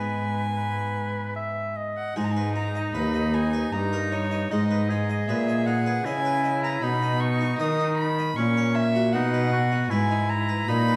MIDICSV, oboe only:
0, 0, Header, 1, 2, 480
1, 0, Start_track
1, 0, Key_signature, 5, "minor"
1, 0, Tempo, 801068
1, 1296, Time_signature, 3, 2, 24, 8
1, 1296, Tempo, 782269
1, 2736, Tempo, 772201
1, 6746, End_track
2, 0, Start_track
2, 0, Title_t, "Oboe"
2, 0, Program_c, 0, 68
2, 0, Note_on_c, 0, 71, 59
2, 280, Note_off_c, 0, 71, 0
2, 335, Note_on_c, 0, 71, 55
2, 792, Note_off_c, 0, 71, 0
2, 815, Note_on_c, 0, 76, 66
2, 1059, Note_on_c, 0, 75, 53
2, 1068, Note_off_c, 0, 76, 0
2, 1296, Note_off_c, 0, 75, 0
2, 1299, Note_on_c, 0, 63, 72
2, 2234, Note_off_c, 0, 63, 0
2, 2256, Note_on_c, 0, 63, 71
2, 2727, Note_off_c, 0, 63, 0
2, 2735, Note_on_c, 0, 63, 66
2, 2979, Note_on_c, 0, 68, 62
2, 2988, Note_off_c, 0, 63, 0
2, 3694, Note_on_c, 0, 64, 75
2, 3704, Note_off_c, 0, 68, 0
2, 4182, Note_on_c, 0, 63, 74
2, 4191, Note_off_c, 0, 64, 0
2, 5033, Note_off_c, 0, 63, 0
2, 5139, Note_on_c, 0, 61, 75
2, 5445, Note_off_c, 0, 61, 0
2, 5619, Note_on_c, 0, 63, 76
2, 5841, Note_off_c, 0, 63, 0
2, 5855, Note_on_c, 0, 66, 84
2, 6091, Note_on_c, 0, 64, 69
2, 6101, Note_off_c, 0, 66, 0
2, 6570, Note_off_c, 0, 64, 0
2, 6574, Note_on_c, 0, 63, 82
2, 6746, Note_off_c, 0, 63, 0
2, 6746, End_track
0, 0, End_of_file